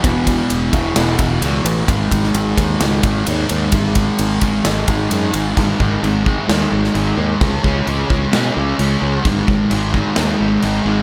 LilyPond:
<<
  \new Staff \with { instrumentName = "Distorted electric guitar" } { \clef bass \time 4/4 \key gis \phrygian \tempo 4 = 130 <e, b, e>4. <b, e>4 <b, e>8 <e, b, e>8 <b, e>8 | <gis, dis gis>4. <dis gis>4 <dis gis>8 <gis, dis gis>8 <dis gis>8 | <gis, dis gis>4. <dis gis>4 <dis gis>8 <gis, dis gis>8 <dis gis>8 | <gis, dis gis>8 <dis gis>8 <gis, dis gis>8 <dis gis>8 <gis, dis gis>8 <dis gis>8 <gis, dis gis>8 <dis gis>8 |
<cis gis cis'>8 <gis cis'>8 <cis gis cis'>8 <gis cis'>8 <cis gis cis'>8 <gis cis'>8 <cis gis cis'>8 <gis cis'>8 | <gis, dis gis>8 <dis gis>8 <gis, dis gis>8 <dis gis>8 <gis, dis gis>8 <dis gis>8 <gis, dis gis>8 <dis gis>8 | }
  \new Staff \with { instrumentName = "Fingered electric bass" } { \clef bass \time 4/4 \key gis \phrygian e,,4 e,,8 e,,8 e,,8 e,,8 cis,8 a,,8 | gis,,8 gis,,8 gis,,8 dis,8 cis,8 gis,,8 dis,8 dis,8 | gis,,4 gis,,8 gis,,8 gis,,8 gis,,8 fis,8 gis,,8 | gis,,8 gis,,8 gis,,4 dis,8 gis,,8 gis,,8 dis,8 |
cis,8 cis,8 cis,8 cis,8 b,8 cis,8 cis,8 cis,8 | gis,,8 gis,,8 gis,,4 dis,8 gis,,8 gis,,8 gis,,8 | }
  \new DrumStaff \with { instrumentName = "Drums" } \drummode { \time 4/4 <bd cymr>8 <bd cymr>8 cymr8 <bd cymr>8 <cymr sn>8 <bd cymr>8 cymr8 cymr8 | <bd cymr>8 <bd cymr>16 sn16 cymr8 <bd cymr>8 <cymr sn>8 <bd cymr>8 cymr8 cymr8 | <bd cymr>8 <bd cymr>8 cymr8 <bd cymr>8 <cymr sn>8 <bd cymr>8 cymr8 cymr8 | <cymc bd>8 bd8 cymc8 bd8 <cymc sn>8. sn16 cymc4 |
<cymc bd>8 bd8 cymc8 bd8 <cymc sn>4 cymc4 | <cymc bd>8 bd8 cymc8 bd8 <cymc sn>4 cymc4 | }
>>